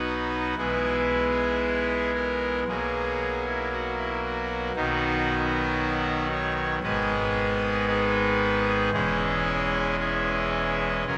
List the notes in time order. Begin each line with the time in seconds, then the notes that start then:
Already playing: B1 B2 F#3 B3 D#4 F#4 B4
0.58 B1 B2 E3 G#3 B3 E4 G#4
2.15 A#4
2.68 B1 B2 F#3 A#3 G#4
3.47 E4
3.72 F#4
3.98 E4
4.25 F#4
4.76 B1 B2 D#3 F#3 B3 D#4 F#4
6.31 C#5
6.83 G#1 G#2 D#3 G#3 B3 G#4 B4 D#5
7.88 D#4 G#4 B4
8.93 E1 E2 E3 G#3 C#4 E4 G#4
9.99 C#4 E4 G#4
11.07 F#1 F#2 C#3 F#3 C#4 F#4 A#4